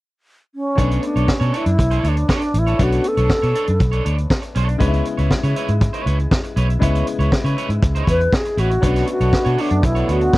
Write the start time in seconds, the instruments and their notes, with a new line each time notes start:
0.55 alto flute C#4
0.75 fingered electric bass B1, grand piano A3 B3 C#4 D4, clean electric guitar D4 A4, kick, closed hi-hat
0.79 clean electric guitar C#5
0.91 closed hi-hat
1.03 alto flute D4, muted clean electric guitar stroke, closed hi-hat
1.16 fingered electric bass B1, clean electric guitar D4 A4 C#5, closed hi-hat
1.28 alto flute C#4, muted clean electric guitar stroke, muted fingered electric bass stroke, kick, snare
1.40 fingered electric bass B2, clean electric guitar D4 A4 C#5, closed hi-hat
1.53 clean electric guitar D4 A4 C#5, closed hi-hat
1.57 alto flute E4
1.65 fingered electric bass F#2, muted clean electric guitar stroke, closed hi-hat
1.78 fingered electric bass B1, muted clean electric guitar stroke, kick, closed hi-hat
1.91 clean electric guitar D4 A4 C#5, closed hi-hat
2.04 fingered electric bass D2, clean electric guitar D4 A4 C#5, closed hi-hat
2.08 alto flute D4
2.17 muted clean electric guitar stroke, closed hi-hat
2.29 clean electric guitar D4 A4 C#5, kick, snare
2.34 alto flute D4
2.42 muted clean electric guitar stroke, closed hi-hat
2.54 fingered electric bass A1, muted clean electric guitar stroke, closed hi-hat
2.59 alto flute E4
2.67 clean electric guitar D4 A4 C#5, closed hi-hat
2.78 fingered electric bass B1, grand piano A3 B3 C#4 D4, clean electric guitar D4 A4 C#5, kick, closed hi-hat
2.83 alto flute F#4
2.92 closed hi-hat
3.04 muted clean electric guitar stroke, closed hi-hat
3.08 alto flute A4
3.17 fingered electric bass B1, clean electric guitar D4 A4 C#5, closed hi-hat
3.30 muted clean electric guitar stroke, kick, snare
3.42 fingered electric bass B2, clean electric guitar D4 A4 C#5, closed hi-hat
3.55 clean electric guitar D4 A4 C#5, closed hi-hat
3.67 fingered electric bass F#2, muted clean electric guitar stroke, closed hi-hat
3.80 fingered electric bass B1, muted clean electric guitar stroke, kick, closed hi-hat
3.92 clean electric guitar D4 A4 C#5, closed hi-hat
4.04 fingered electric bass D2, clean electric guitar D4 A4 C#5, closed hi-hat
4.17 muted clean electric guitar stroke, closed hi-hat
4.30 kick, snare
4.42 muted clean electric guitar stroke, closed hi-hat
4.55 fingered electric bass B1, clean electric guitar D4 A4 C#5, closed hi-hat
4.68 muted clean electric guitar stroke, closed hi-hat
4.78 fingered electric bass C#2, grand piano C#3 G#3 B3 D4, clean electric guitar E4 B4 C#5, kick, closed hi-hat
4.87 grand piano E4
4.94 closed hi-hat
5.05 muted clean electric guitar stroke, closed hi-hat
5.18 fingered electric bass C#2, clean electric guitar E4 B4 C#5, closed hi-hat
5.31 muted clean electric guitar stroke, kick, snare
5.43 fingered electric bass C#3, clean electric guitar E4 B4 C#5, closed hi-hat
5.56 clean electric guitar E4 B4 C#5, closed hi-hat
5.68 fingered electric bass G#2, muted clean electric guitar stroke, closed hi-hat
5.81 muted clean electric guitar stroke, kick, closed hi-hat
5.93 clean electric guitar E4 B4 C#5, closed hi-hat
6.06 fingered electric bass C#2, clean electric guitar E4 B4 C#5, closed hi-hat
6.19 muted clean electric guitar stroke, closed hi-hat
6.31 kick, snare
6.44 muted clean electric guitar stroke, closed hi-hat
6.56 fingered electric bass B1, clean electric guitar E4 B4 C#5, closed hi-hat
6.69 muted clean electric guitar stroke, closed hi-hat
6.79 fingered electric bass C#2, grand piano C#3 G#3 B3 E4, clean electric guitar E4 B4, kick, closed hi-hat
6.83 clean electric guitar C#5
6.95 closed hi-hat
7.07 muted clean electric guitar stroke, closed hi-hat
7.19 fingered electric bass C#2, clean electric guitar E4 B4 C#5, closed hi-hat
7.32 muted clean electric guitar stroke, kick, snare
7.44 fingered electric bass C#3, clean electric guitar E4 B4 C#5, closed hi-hat
7.57 clean electric guitar E4 B4 C#5, closed hi-hat
7.69 fingered electric bass G#2, muted clean electric guitar stroke, closed hi-hat
7.83 fingered electric bass C#2, muted clean electric guitar stroke, kick, closed hi-hat
7.95 clean electric guitar E4 B4 C#5, closed hi-hat
8.07 fingered electric bass E2, clean electric guitar E4 B4 C#5, alto flute B4, kick, closed hi-hat
8.20 muted clean electric guitar stroke, closed hi-hat
8.33 alto flute G#4, kick, snare
8.45 muted clean electric guitar stroke, closed hi-hat
8.57 fingered electric bass A1, clean electric guitar E4 B4 C#5, alto flute F#4, closed hi-hat
8.71 muted clean electric guitar stroke, closed hi-hat
8.81 fingered electric bass B1, french horn section B2 D3 A3 B3, grand piano A3 B3 C#4 D4, clean electric guitar D4 A4 C#5, kick, closed hi-hat
8.96 snare, closed hi-hat
9.07 alto flute F#4, muted clean electric guitar stroke, closed hi-hat
9.20 fingered electric bass B1, clean electric guitar D4 A4 C#5, closed hi-hat
9.33 muted clean electric guitar stroke, kick, snare
9.45 fingered electric bass B2, clean electric guitar D4 A4 C#5, closed hi-hat
9.57 clean electric guitar D4 A4 C#5, alto flute D4, open hi-hat
9.70 fingered electric bass F#2, muted clean electric guitar stroke, closed hi-hat
9.83 fingered electric bass B1, alto flute E4, muted clean electric guitar stroke, kick, closed hi-hat
9.95 clean electric guitar D4 A4 C#5, closed hi-hat
10.08 fingered electric bass D2, clean electric guitar D4 A4 C#5, alto flute F#4, closed hi-hat
10.21 muted clean electric guitar stroke, closed hi-hat
10.33 kick, snare